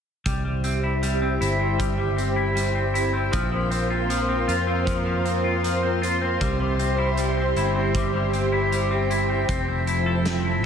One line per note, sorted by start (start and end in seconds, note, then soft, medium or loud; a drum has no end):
0.26 1.37 C2 medium
0.26 0.44 G3 medium
0.26 3.31 G4 medium
0.26 9.45 C5 medium
0.26 3.30 E5 medium
0.26 9.45 C6 medium
0.26 kick medium
0.26 closed hi-hat medium
0.45 1.01 G3 soft
0.64 1.21 C4 soft
0.64 closed hi-hat soft
0.83 1.40 E4 soft
1.03 1.78 G3 medium
1.03 closed hi-hat soft
1.22 1.59 C4 soft
1.41 3.29 G1 medium
1.41 2.35 E4 medium
1.41 closed hi-hat soft
1.60 2.16 C4 soft
1.79 1.97 G3 medium
1.79 kick medium
1.79 closed hi-hat medium
1.98 2.54 G3 soft
2.17 2.75 C4 soft
2.17 closed hi-hat soft
2.36 2.93 E4 medium
2.55 3.32 G3 soft
2.55 closed hi-hat medium
2.75 3.13 C4 soft
2.94 3.41 E4 medium
2.94 closed hi-hat soft
3.13 3.70 C4 soft
3.32 4.45 A#1 medium
3.32 3.50 F3 medium
3.32 6.38 A#4 medium
3.32 6.39 F5 medium
3.32 kick medium
3.32 closed hi-hat medium
3.52 4.08 F3 medium
3.70 4.28 C4 soft
3.70 closed hi-hat soft
3.90 4.47 F4 soft
4.10 4.85 F3 medium
4.10 closed hi-hat medium
4.29 4.67 C4 soft
4.48 6.37 F2 medium
4.48 5.43 F4 medium
4.48 closed hi-hat soft
4.67 5.25 C4 soft
4.86 5.04 F3 medium
4.86 kick medium
4.86 closed hi-hat medium
5.05 5.62 F3 soft
5.25 5.82 C4 soft
5.25 closed hi-hat soft
5.44 6.01 F4 medium
5.63 6.40 F3 soft
5.63 closed hi-hat medium
5.83 6.21 C4 medium
6.02 6.48 F4 medium
6.02 closed hi-hat soft
6.22 6.79 C4 medium
6.41 7.52 C2 medium
6.41 6.59 G3 medium
6.41 9.46 G4 medium
6.41 9.46 E5 medium
6.41 kick medium
6.41 closed hi-hat medium
6.60 7.17 G3 soft
6.79 7.37 C4 soft
6.79 closed hi-hat soft
6.98 7.56 E4 soft
7.17 7.94 G3 medium
7.17 closed hi-hat medium
7.37 7.75 C4 medium
7.56 9.45 G1 medium
7.56 8.52 E4 medium
7.56 closed hi-hat soft
7.76 8.33 C4 medium
7.95 8.13 G3 medium
7.95 kick medium
7.95 closed hi-hat medium
8.14 8.71 G3 soft
8.33 8.91 C4 soft
8.33 closed hi-hat soft
8.52 9.10 E4 medium
8.72 9.56 G3 soft
8.72 closed hi-hat medium
8.91 9.29 C4 soft
9.10 9.87 E4 medium
9.10 closed hi-hat soft
9.30 9.48 C4 medium
9.48 10.64 F1 medium
9.48 10.66 F3 medium
9.48 9.68 C4 medium
9.48 10.66 C5 medium
9.48 10.66 E5 medium
9.48 10.66 A5 medium
9.48 kick medium
9.48 closed hi-hat medium
9.68 10.25 C4 soft
9.87 10.44 E4 soft
9.87 closed hi-hat soft
10.06 10.62 A4 medium
10.25 10.66 C4 medium
10.25 snare medium
10.25 closed hi-hat medium
10.45 10.66 E4 soft